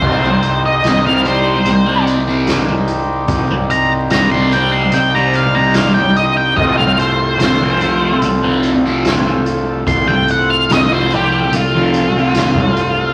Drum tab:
CC |x---------------|----------------|x---------------|----------------|
HH |--x-x-x-x-x-x-x-|x-x-x-x-x-x-x-x-|--x-x-x-x-x-x-x-|x-x-x-x-x-x-x-x-|
SD |----o------oo---|----o----o--o---|----o------oo---|----o-------o---|
BD |o---------------|o---------------|o---------------|o------------o--|